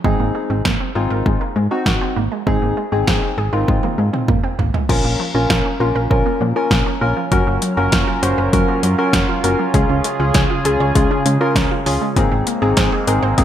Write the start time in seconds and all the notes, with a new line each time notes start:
0.04 G#1 G#3 C4 D#4 G#4, kick
0.20 G#1 A#3
0.35 G#3
0.50 G#1 C4
0.65 G#1 A#3, kick, snare
0.80 C4
0.95 G#1 C4 D#4 F4 G#4
1.10 G#1 A#4
1.26 G#1 G#3, kick
1.41 A#3
1.56 G#2 G#3
1.71 C4 D#4 F#4
1.86 G#1 A#3, kick, snare
2.01 C4
2.16 G#1 A#3
2.32 G#3
2.47 G#1 G#3 C4 D#4 G#4, kick
2.62 G#1 A#3
2.77 G#3
2.92 G#1 C4 D#4 G#4
3.07 G#1 A#3, kick, snare
3.22 C4
3.38 G#1 G#4
3.53 G#1 C4 D#4 F4 A#4
3.68 G#1 G#3, kick, high tom
3.83 A#3, high tom
3.98 G#2 G#3
4.13 C4, mid tom
4.28 G#1 A#3, kick, mid tom
4.44 C4
4.59 G#1 A#3, floor tom
4.74 G#3, floor tom
4.89 A#1 F3 A#3 C#4 F4 A#4, kick, crash
5.04 A#1 A#3
5.20 F3
5.35 A#1 C#4 F4 A#4
5.50 A#1 A#3, kick, snare
5.65 C#4
5.80 A#1 C#4 F4 A#4
5.95 A#1 A#4
6.10 A#1 F3 C#4 F4 A#4, kick
6.26 A#3
6.41 A#2 F3
6.56 C#4 F4 A#4
6.71 A#1 A#3, kick, snare
6.86 C#4
7.01 A#1 A#3 C#4 F4 A#4
7.17 F3
7.32 F#1 F#3 C#4 F#4 A#4, kick, closed hi-hat
7.47 F#1 A#3
7.62 F#3, closed hi-hat
7.77 F#1 C#4 F4 F#4 A#4
7.92 F#1 A#3, kick, snare, closed hi-hat
8.08 F4
8.22 F#1 C#4 F#4 C5, closed hi-hat
8.38 F#1 A#4
8.53 F#1 F#3 C#4 F#4 A#4, kick, closed hi-hat
8.68 A#3
8.83 F#2 F#3, closed hi-hat
8.98 C#4 F4 F#4 A#4
9.13 F#1 A#3, kick, snare, closed hi-hat
9.29 F4
9.44 F#1 A#3 C#4 F#4 A#4, closed hi-hat
9.59 F#3
9.74 C#2 C#3 G#3 C#4 F4 G#4, kick, closed hi-hat
9.89 C#2 C#4
10.04 G#3, closed hi-hat
10.20 C#2 C#4 F4 G#4
10.34 C#2 C#4, kick, snare, closed hi-hat
10.50 F4
10.65 C#2 C#4 F4 G#4, closed hi-hat
10.80 C#2 C#5
10.95 C#2 G#3 C#4 F4 G#4, kick, closed hi-hat
11.11 C#4
11.26 C#3 G#3, closed hi-hat
11.41 C#4 F4 A#4
11.56 C#2 C#4, kick, snare, closed hi-hat
11.71 F4
11.86 C#2 C#4 F4 G#4, open hi-hat
12.01 G#3
12.16 G#1 G#3 A#3 C4 D#4 G#4, kick, closed hi-hat
12.32 G#1 C4
12.47 A#3, closed hi-hat
12.62 G#1 C4 D#4 G#4
12.77 G#1 C4, kick, snare, closed hi-hat
12.92 G#4
13.07 G#1 C4 D#4 G#4 A#4, closed hi-hat
13.23 G#1 C5
13.38 G#1 A#3 C4 D#4 G#4, kick, closed hi-hat